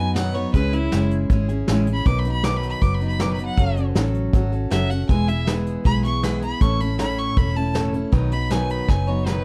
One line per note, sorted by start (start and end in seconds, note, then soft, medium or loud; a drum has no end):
0.00 0.45 F#2 medium
0.00 0.15 F#3 soft
0.00 0.15 B3 soft
0.00 0.15 D#4 soft
0.00 0.16 B4 medium
0.00 0.15 G#5 loud
0.15 0.34 B2 medium
0.15 0.35 D#3 medium
0.15 0.35 F#3 medium
0.15 0.35 B3 loud
0.15 0.34 D#4 medium
0.15 0.33 B4 medium
0.15 0.36 F#5 medium
0.15 snare loud
0.15 closed hi-hat medium
0.34 0.54 F#3 soft
0.34 0.54 B3 soft
0.34 0.54 D#4 soft
0.34 0.54 B4 medium
0.34 0.53 C#5 loud
0.34 closed hi-hat medium
0.54 0.88 C#2 medium
0.54 0.73 C#3 medium
0.54 0.73 G#3 medium
0.54 0.73 C#4 medium
0.54 0.73 E4 medium
0.54 0.71 G#4 medium
0.54 0.75 B4 loud
0.54 kick loud
0.54 closed hi-hat medium
0.73 0.91 C#4 soft
0.73 1.10 E4 loud
0.73 0.92 E4 medium
0.73 0.92 G#4 medium
0.73 closed hi-hat medium
0.91 1.24 F#1 medium
0.91 1.30 C#3 medium
0.91 1.29 G#3 medium
0.91 1.30 C#4 medium
0.91 1.30 E4 medium
0.91 1.30 G#4 medium
0.91 snare loud
0.91 closed hi-hat medium
1.11 closed hi-hat medium
1.29 1.62 G#1 medium
1.29 1.49 G#3 medium
1.29 1.49 C#4 medium
1.29 1.49 E4 medium
1.29 1.47 G#4 medium
1.29 kick loud
1.29 closed hi-hat medium
1.49 1.68 C#4 medium
1.49 1.68 E4 medium
1.49 1.68 G#4 medium
1.49 closed hi-hat medium
1.68 2.00 A1 medium
1.68 1.87 C#3 loud
1.68 1.87 G#3 medium
1.68 1.87 C#4 loud
1.68 1.87 E4 loud
1.68 1.86 G#4 loud
1.68 snare loud
1.68 closed hi-hat medium
1.87 2.07 C#4 soft
1.87 2.06 G#4 medium
1.87 closed hi-hat medium
1.93 2.08 B5 loud
2.05 2.73 B1 medium
2.05 2.25 B2 medium
2.05 2.25 D#3 medium
2.05 2.25 F#3 medium
2.05 2.25 B3 medium
2.05 2.25 D#4 medium
2.05 2.24 B4 medium
2.05 2.20 D6 loud
2.05 kick loud
2.05 closed hi-hat medium
2.19 2.31 B5 loud
2.25 2.43 F#3 soft
2.25 2.44 B3 soft
2.25 2.44 D#4 soft
2.25 2.44 B4 medium
2.25 closed hi-hat medium
2.31 2.45 B5 medium
2.44 2.82 B2 medium
2.44 2.82 D#3 medium
2.44 2.81 F#3 medium
2.44 2.82 B3 medium
2.44 2.83 D#4 medium
2.44 2.83 B4 medium
2.44 2.58 D6 medium
2.44 snare loud
2.44 closed hi-hat medium
2.56 2.69 B5 loud
2.63 closed hi-hat medium
2.69 2.83 B5 medium
2.82 3.49 F#1 medium
2.82 3.01 F#3 medium
2.82 3.01 B3 medium
2.82 3.01 D#4 medium
2.82 2.99 B4 medium
2.82 2.96 D6 medium
2.82 kick loud
2.82 closed hi-hat medium
2.94 3.07 B5 medium
3.01 3.19 F#3 soft
3.01 3.19 B3 soft
3.01 3.20 D#4 medium
3.01 3.20 B4 medium
3.01 closed hi-hat medium
3.07 3.22 B5 medium
3.19 3.38 B2 medium
3.19 3.39 D#3 medium
3.19 3.39 F#3 medium
3.19 3.39 B3 medium
3.19 3.38 D#4 medium
3.19 3.37 B4 medium
3.19 3.32 D6 medium
3.19 snare loud
3.19 closed hi-hat medium
3.33 3.45 B5 medium
3.38 3.56 F#3 soft
3.38 3.58 B3 soft
3.38 3.58 D#4 soft
3.38 3.57 B4 soft
3.38 closed hi-hat medium
3.45 3.82 F#5 loud
3.57 3.91 F#1 medium
3.57 3.76 F#3 medium
3.57 3.77 C#4 medium
3.57 3.76 F#4 medium
3.57 3.75 A4 medium
3.57 kick loud
3.57 closed hi-hat medium
3.76 3.95 C#4 soft
3.76 3.95 F#4 soft
3.76 3.95 A4 soft
3.76 closed hi-hat medium
3.95 4.28 A1 medium
3.95 4.32 F#3 medium
3.95 4.33 C#4 medium
3.95 4.34 F#4 medium
3.95 4.34 A4 medium
3.95 snare loud
3.95 closed hi-hat medium
4.14 closed hi-hat medium
4.33 4.66 G#1 medium
4.33 4.52 F#3 medium
4.33 4.53 C#4 medium
4.33 4.52 F#4 medium
4.33 4.51 A4 medium
4.33 kick loud
4.33 closed hi-hat medium
4.52 4.70 C#4 soft
4.52 4.71 F#4 soft
4.52 4.71 A4 medium
4.52 closed hi-hat medium
4.70 5.03 F#1 medium
4.70 4.90 F#3 medium
4.70 4.90 C#4 medium
4.70 4.91 F#4 medium
4.70 4.89 A4 loud
4.70 4.92 E5 loud
4.70 snare loud
4.70 closed hi-hat medium
4.90 5.10 C#4 soft
4.90 5.10 F#4 soft
4.90 5.09 A4 soft
4.90 5.09 F#5 medium
4.90 closed hi-hat medium
5.09 5.76 E1 medium
5.09 5.28 E3 medium
5.09 5.29 G#3 medium
5.09 5.29 B3 medium
5.09 5.28 E4 medium
5.09 5.27 G#4 medium
5.09 5.30 G#5 medium
5.09 kick loud
5.09 closed hi-hat medium
5.28 5.47 B3 soft
5.28 5.47 E4 soft
5.28 5.47 G#4 soft
5.28 5.47 E5 loud
5.28 closed hi-hat medium
5.47 6.22 E3 medium
5.47 5.83 G#3 medium
5.47 5.84 B3 medium
5.47 5.86 E4 medium
5.47 5.86 G#4 medium
5.47 snare loud
5.47 closed hi-hat medium
5.66 closed hi-hat medium
5.84 6.52 B1 medium
5.84 6.04 G#3 medium
5.84 6.04 B3 medium
5.84 6.04 E4 medium
5.84 6.03 G#4 medium
5.84 6.04 B5 loud
5.84 kick loud
5.84 closed hi-hat medium
6.04 6.23 B3 soft
6.04 6.23 E4 soft
6.04 6.23 G#4 medium
6.04 6.25 C#6 loud
6.04 closed hi-hat medium
6.23 6.42 E3 medium
6.23 6.42 G#3 medium
6.23 6.43 B3 medium
6.23 6.42 E4 medium
6.23 6.41 G#4 medium
6.23 6.42 B5 medium
6.23 snare loud
6.23 closed hi-hat medium
6.42 6.61 B3 soft
6.42 6.61 E4 soft
6.42 6.61 G#4 medium
6.42 6.63 B5 loud
6.42 closed hi-hat medium
6.61 7.28 A1 medium
6.61 6.80 A2 medium
6.61 6.80 E3 medium
6.61 6.80 A3 medium
6.61 6.80 C#4 medium
6.61 6.80 E4 medium
6.61 6.78 A4 medium
6.61 6.82 C#6 loud
6.61 kick loud
6.61 closed hi-hat medium
6.80 6.98 A3 soft
6.80 6.98 C#4 soft
6.80 6.98 E4 soft
6.80 6.99 A4 medium
6.80 6.99 B5 medium
6.80 closed hi-hat medium
6.98 7.36 A2 medium
6.98 7.37 E3 medium
6.98 7.35 A3 medium
6.98 7.36 C#4 medium
6.98 7.37 E4 medium
6.98 7.37 A4 medium
6.98 7.20 B5 loud
6.98 snare loud
6.98 closed hi-hat medium
7.18 7.39 C#6 loud
7.18 closed hi-hat medium
7.36 8.04 E1 medium
7.36 7.56 A3 medium
7.36 7.56 C#4 medium
7.36 7.56 E4 medium
7.36 7.54 A4 medium
7.36 7.58 B5 loud
7.36 kick loud
7.36 closed hi-hat medium
7.55 7.74 A3 soft
7.55 7.74 C#4 soft
7.55 7.74 E4 soft
7.55 7.75 A4 medium
7.55 7.75 A5 loud
7.55 closed hi-hat medium
7.74 7.94 A2 medium
7.74 7.94 E3 medium
7.74 7.94 A3 medium
7.74 7.94 C#4 medium
7.74 7.93 E4 medium
7.74 7.92 A4 medium
7.74 snare loud
7.74 closed hi-hat medium
7.93 8.12 A3 soft
7.93 8.12 C#4 medium
7.93 8.13 E4 medium
7.93 8.12 A4 medium
7.93 closed hi-hat medium
8.12 8.80 B1 medium
8.12 8.31 B2 medium
8.12 8.32 D#3 medium
8.12 8.32 F#3 medium
8.12 8.32 B3 loud
8.12 8.31 D#4 medium
8.12 8.30 B4 loud
8.12 kick loud
8.12 closed hi-hat medium
8.31 8.50 F#3 soft
8.31 8.50 B3 soft
8.31 8.50 D#4 soft
8.31 8.50 B4 medium
8.31 8.53 B5 loud
8.31 closed hi-hat medium
8.50 8.88 B2 medium
8.50 8.89 D#3 medium
8.50 8.87 F#3 medium
8.50 8.88 B3 medium
8.50 8.89 D#4 medium
8.50 8.89 B4 medium
8.50 8.72 G#5 medium
8.50 snare loud
8.50 closed hi-hat medium
8.70 8.91 B5 loud
8.70 closed hi-hat medium
8.88 9.45 F#1 medium
8.88 9.08 F#3 medium
8.88 9.08 B3 medium
8.88 9.07 D#4 medium
8.88 9.06 B4 medium
8.88 9.09 G#5 medium
8.88 kick loud
8.88 snare medium
9.07 9.26 F#3 soft
9.07 9.27 B3 soft
9.07 9.27 D#4 soft
9.07 9.26 B4 medium
9.07 9.28 C#5 medium
9.26 9.45 B2 medium
9.26 9.45 D#3 medium
9.26 9.45 F#3 medium
9.26 9.45 B3 medium
9.26 9.45 D#4 medium
9.26 9.45 B4 medium
9.26 9.44 B4 medium
9.26 snare medium